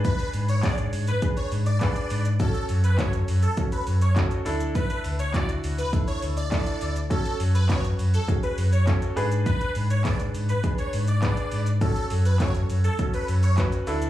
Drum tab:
HH |xxoxxxoxxxoxxxox|xxoxxxoxxxoxxxox|xxoxxxoxxxoxxxox|xxoxxxoxxxoxxxox|
SH |xxxxxxxxxxxxxxxx|xxxxxxxxxxxxxxxx|xxxxxxxxxxxxxxxx|xxxxxxxxxxxxxxxx|
CP |----x-------x---|----x-------x---|----x-------x---|----x-------x---|
BD |o---o---o---o---|o---o---o---o---|o---o---o---o---|o---o---o---o---|

HH |xxoxxxoxxxoxxxox|xxoxxxoxxxoxxxox|
SH |xxxxxxxxxxxxxxxx|xxxxxxxxxxxxxxxx|
CP |----x-------x---|----x-------x---|
BD |o---o---o---o---|o---o---o---o---|